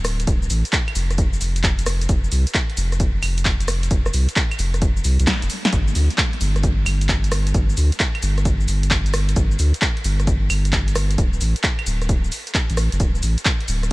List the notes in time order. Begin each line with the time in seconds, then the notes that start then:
Already playing: D1
0.05 cross-stick, open hi-hat, cabasa
0.20 closed hi-hat, cabasa
0.27 D1, kick, closed hi-hat, cabasa
0.42 cabasa
0.50 A1, open hi-hat, cabasa
0.65 closed hi-hat, cabasa
0.73 kick, clap, cabasa
0.88 closed hi-hat, claves
0.95 F1, open hi-hat, cabasa
1.11 cross-stick, closed hi-hat, cabasa
1.18 kick, closed hi-hat, cabasa
1.33 cabasa
1.41 F1, open hi-hat, cabasa
1.56 closed hi-hat, cabasa
1.64 kick, clap, cabasa
1.79 closed hi-hat, cabasa
1.86 cross-stick, open hi-hat, cabasa
2.01 closed hi-hat, cabasa
2.09 F1, kick, closed hi-hat, cabasa
2.24 cabasa
2.32 C2, open hi-hat, cabasa
2.47 closed hi-hat, cabasa
2.54 kick, clap, cabasa
2.70 closed hi-hat
2.77 F1, open hi-hat, cabasa
2.92 cross-stick, closed hi-hat, cabasa
3.00 kick, closed hi-hat, cabasa
3.23 F1, open hi-hat, cabasa, claves
3.38 closed hi-hat, cabasa
3.45 kick, clap, cabasa
3.60 closed hi-hat, cabasa
3.68 cross-stick, open hi-hat, cabasa
3.83 closed hi-hat, cabasa
3.91 F1, kick, closed hi-hat, cabasa
4.06 cross-stick, cabasa
4.13 C2, open hi-hat, cabasa
4.29 closed hi-hat, cabasa
4.36 kick, clap, cabasa
4.51 closed hi-hat, cabasa, claves
4.59 F1, open hi-hat, cabasa
4.74 cross-stick, closed hi-hat, cabasa
4.82 kick, closed hi-hat, cabasa
4.97 cabasa
5.04 C2, open hi-hat, cabasa
5.20 C2, closed hi-hat, cabasa
5.27 kick, snare, clap, cabasa
5.42 F1, closed hi-hat, cabasa
5.50 open hi-hat, cabasa
5.65 snare, closed hi-hat, cabasa
5.73 G1, kick, closed hi-hat, cabasa
5.88 cabasa
5.95 D2, open hi-hat, cabasa
6.10 closed hi-hat, cabasa
6.18 kick, clap, cabasa
6.33 closed hi-hat
6.41 G1, open hi-hat, cabasa
6.56 cross-stick, closed hi-hat, cabasa
6.63 kick, closed hi-hat, cabasa
6.86 G1, open hi-hat, cabasa, claves
7.01 closed hi-hat, cabasa
7.09 kick, clap, cabasa
7.24 closed hi-hat, cabasa
7.32 cross-stick, open hi-hat, cabasa
7.47 closed hi-hat, cabasa
7.54 G1, kick, closed hi-hat, cabasa
7.70 cabasa
7.77 D2, open hi-hat, cabasa
7.92 closed hi-hat, cabasa
8.00 kick, clap, cabasa
8.15 closed hi-hat, claves
8.23 G1, open hi-hat, cabasa
8.38 cross-stick, closed hi-hat, cabasa
8.45 kick, closed hi-hat, cabasa
8.60 cabasa
8.68 G1, open hi-hat, cabasa
8.83 closed hi-hat, cabasa
8.91 kick, clap, cabasa
9.06 closed hi-hat, cabasa
9.14 cross-stick, open hi-hat, cabasa
9.29 closed hi-hat, cabasa
9.36 G1, kick, closed hi-hat, cabasa
9.51 cabasa
9.59 D2, open hi-hat, cabasa
9.74 closed hi-hat, cabasa
9.82 kick, clap, cabasa
9.97 closed hi-hat
10.04 G1, open hi-hat, cabasa
10.20 cross-stick, closed hi-hat, cabasa
10.27 kick, closed hi-hat, cabasa
10.50 G1, open hi-hat, cabasa, claves
10.65 closed hi-hat, cabasa
10.73 kick, clap, cabasa
10.88 closed hi-hat, cabasa
10.95 cross-stick, open hi-hat, cabasa
11.11 closed hi-hat, cabasa
11.18 D1, kick, closed hi-hat, cabasa
11.33 cabasa
11.41 A1, open hi-hat, cabasa
11.56 closed hi-hat, cabasa
11.64 kick, clap, cabasa
11.79 closed hi-hat, claves
11.86 D1, open hi-hat, cabasa
12.02 cross-stick, closed hi-hat, cabasa
12.09 kick, closed hi-hat, cabasa
12.24 cabasa
12.32 open hi-hat, cabasa
12.47 closed hi-hat, cabasa
12.55 kick, clap, cabasa
12.70 A1, closed hi-hat, cabasa
12.77 cross-stick, open hi-hat, cabasa
12.92 F#1, closed hi-hat, cabasa
13.00 D1, kick, closed hi-hat, cabasa
13.15 cabasa
13.23 A1, open hi-hat, cabasa
13.38 closed hi-hat, cabasa
13.45 kick, clap, cabasa
13.61 closed hi-hat
13.68 D1, open hi-hat, cabasa
13.83 cross-stick, closed hi-hat, cabasa